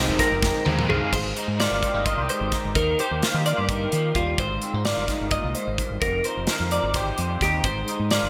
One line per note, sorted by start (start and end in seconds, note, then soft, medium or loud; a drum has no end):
0.00 0.66 G#2 medium
0.00 0.27 D#3 medium
0.00 1.58 D#3 medium
0.00 0.27 G#3 medium
0.00 0.20 C4 medium
0.00 0.27 C4 medium
0.00 0.27 D#4 medium
0.00 0.43 D#4 medium
0.00 0.89 G4 soft
0.00 0.20 C5 medium
0.08 0.17 F1 medium
0.19 1.11 C4 medium
0.19 0.66 A#4 medium
0.19 kick medium
0.19 snare soft
0.19 closed hi-hat medium
0.32 0.50 F1 medium
0.43 1.11 D#4 medium
0.43 kick loud
0.43 snare medium
0.65 0.85 D#2 medium
0.65 1.11 G#2 medium
0.65 0.87 D#3 medium
0.65 0.87 G#3 loud
0.65 0.88 C4 loud
0.65 0.88 D#4 medium
0.65 high tom medium
0.79 mid tom medium
0.88 0.99 C2 medium
0.88 1.12 D#3 medium
0.88 1.13 G#3 medium
0.88 1.13 C4 medium
0.88 1.13 D#4 medium
0.88 1.13 F4 medium
0.88 1.13 G#4 medium
0.88 mid tom medium
1.13 1.31 G#1 medium
1.13 2.27 G#2 medium
1.13 1.60 C5 medium
1.13 kick medium
1.13 crash medium
1.36 1.82 D#4 medium
1.36 closed hi-hat soft
1.48 1.66 G#2 medium
1.60 2.74 D#3 medium
1.60 2.05 F4 medium
1.60 2.06 D5 medium
1.60 snare medium
1.60 closed hi-hat medium
1.71 1.80 G1 medium
1.82 1.94 C4 soft
1.82 kick medium
1.82 closed hi-hat medium
1.94 2.13 G1 medium
1.94 2.51 D#4 soft
2.06 2.18 F4 medium
2.06 2.30 D#5 medium
2.06 kick loud
2.06 closed hi-hat medium
2.17 2.27 C2 medium
2.17 2.76 G4 soft
2.28 2.73 G#2 medium
2.28 2.75 C5 medium
2.28 closed hi-hat medium
2.41 2.50 G#1 medium
2.52 3.26 D#4 medium
2.52 kick medium
2.52 snare soft
2.52 closed hi-hat medium
2.65 2.74 G#1 medium
2.75 2.94 D#2 medium
2.75 3.68 D#3 medium
2.75 2.99 A#4 medium
2.75 kick medium
2.75 closed hi-hat medium
2.99 3.23 G4 medium
2.99 3.46 C5 medium
2.99 closed hi-hat medium
3.11 3.20 D#2 medium
3.23 4.37 A#3 medium
3.23 3.35 F4 soft
3.23 snare medium
3.23 closed hi-hat medium
3.34 3.53 D#3 medium
3.34 3.45 G4 soft
3.46 3.57 F4 medium
3.46 3.70 D5 medium
3.46 closed hi-hat medium
3.57 3.86 G2 medium
3.57 4.39 G4 medium
3.69 3.92 D#3 medium
3.69 4.16 A#4 medium
3.69 kick loud
3.69 closed hi-hat medium
3.92 4.11 D#3 medium
3.92 4.16 F3 medium
3.92 closed hi-hat medium
4.15 4.34 D#2 medium
4.15 4.39 G3 medium
4.15 4.39 F4 medium
4.15 kick medium
4.15 closed hi-hat medium
4.38 4.57 G#1 medium
4.38 5.55 G#2 medium
4.38 4.85 C5 medium
4.38 kick loud
4.38 closed hi-hat medium
4.62 4.74 C4 medium
4.62 closed hi-hat medium
4.74 4.92 G#2 medium
4.74 5.09 D#4 soft
4.85 6.48 D#3 medium
4.85 6.49 F4 medium
4.85 5.31 D5 medium
4.85 snare medium
4.85 closed hi-hat medium
4.97 5.06 G1 medium
5.08 6.06 D#4 medium
5.08 kick medium
5.08 snare soft
5.08 closed hi-hat soft
5.21 5.39 G1 medium
5.31 5.56 A#2 medium
5.31 5.55 D#5 medium
5.31 kick medium
5.31 closed hi-hat medium
5.44 5.53 C2 medium
5.55 5.79 G#2 medium
5.55 6.02 C5 medium
5.55 closed hi-hat medium
5.67 5.77 G#1 medium
5.78 6.02 G2 medium
5.78 kick medium
5.78 closed hi-hat medium
5.90 5.99 G#1 medium
6.02 6.20 F1 medium
6.02 7.64 F2 medium
6.02 6.25 A#4 medium
6.02 kick loud
6.02 closed hi-hat medium
6.24 6.71 D#4 medium
6.24 6.71 C5 medium
6.24 closed hi-hat medium
6.37 6.46 F1 medium
6.47 7.62 F3 medium
6.47 6.95 A#4 medium
6.47 snare medium
6.47 closed hi-hat medium
6.60 6.78 F2 medium
6.71 7.42 D#4 medium
6.71 6.95 D5 medium
6.71 closed hi-hat medium
6.83 7.11 G#1 medium
6.94 7.68 G4 medium
6.94 7.42 C5 medium
6.94 kick loud
6.94 snare soft
6.94 closed hi-hat medium
7.18 7.37 F2 medium
7.18 7.62 C3 medium
7.18 closed hi-hat medium
7.41 7.60 D#2 medium
7.41 7.89 D#4 soft
7.41 7.65 G4 medium
7.41 kick medium
7.41 snare soft
7.41 closed hi-hat medium
7.64 7.83 G#1 medium
7.64 8.29 G#2 medium
7.64 8.11 C5 medium
7.64 kick loud
7.64 closed hi-hat medium
7.88 8.29 D#4 medium
7.88 closed hi-hat medium
8.00 8.18 G#2 medium
8.11 8.29 D#3 medium
8.11 8.29 F4 medium
8.11 8.29 D5 medium
8.11 snare medium
8.11 closed hi-hat medium
8.23 8.29 G1 medium